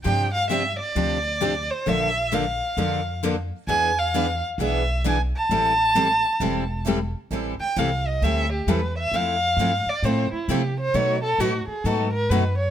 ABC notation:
X:1
M:4/4
L:1/8
Q:"Swing" 1/4=132
K:Am
V:1 name="Violin"
g f e d4 c | e2 f4 z2 | ^g f2 z e2 g a- | a6 z2 |
z g f ^d e G B e | f3 d c E G c | ^c A ^F ^G A _B =B c |]
V:2 name="Steel-string acoustic guitar"
[C,F,CDG] z [C,F,CDG] z [C,F,CDG] z [C,F,CDG] z | [D,F,_B,DA] z [D,F,B,DA] z [D,F,B,DA] z [D,F,B,DA] z | [E,B,D^G] z [E,B,DG] z [E,B,DG] z [E,B,DG] z | [E,G,CEA] z [E,G,CEA] z [E,G,CEA] z [E,G,CEA] z |
[E,G,CEA] z [E,G,CEA] z [E,G,CEA] z [E,G,CEA] z | [F,CEA] z [F,CEA] z [F,CEA] z [F,CEA] z | [B,,^F,A,^D^F] z [B,,F,A,DF] z [B,,F,A,DF] z [B,,F,A,DF] z |]
V:3 name="Steel-string acoustic guitar"
[C,F,CDG] z [C,F,CDG] z [C,F,CDG] z [C,F,CDG] z | [D,F,_B,DA] z [D,F,B,DA] z [D,F,B,DA] z [D,F,B,DA] z | [E,B,D^GB] z [E,B,DGB] z [E,B,DGB] z [E,B,DGB] z | [E,G,CEA] z [E,G,CEA] z [E,G,CEA] z [E,G,CEA] z |
[E,G,CEA] z [E,G,CEA] z [E,G,CEA] z [E,G,CEA] z | [F,A,CEA] z [F,A,CEA] z [F,A,CEA] z [F,A,CEA] z | [B,,^F,A,^D^FB] z [B,,F,A,DFB] z [B,,F,A,DFB] z [B,,F,A,DFB] z |]
V:4 name="Upright bass" clef=bass
G,,4 D,,4 | _B,,,4 F,,4 | E,,4 B,,,4 | A,,,4 E,,,4 |
A,,, z C,,2 D,,2 E,,2 | F,,2 G,, z A,, z C,2 | B,,2 A,, z ^G,,2 ^F,,2 |]